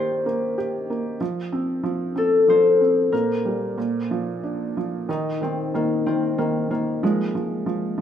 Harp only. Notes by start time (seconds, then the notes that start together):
Already playing: A#4 C5 D5
2.18 A4
2.50 C5
3.12 A#4
5.10 D#4
5.43 C4
5.75 A#3
6.06 C4
6.38 A#3
6.71 A#3
7.03 G#3